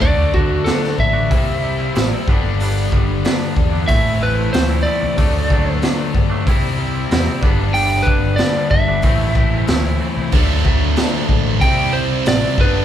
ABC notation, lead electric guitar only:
X:1
M:4/4
L:1/8
Q:1/4=93
K:Dmix
V:1 name="Lead electric guitar"
d F A e3 z2 | z4 e B c d- | d2 z6 | g B d e3 z2 |
z4 g c d B |]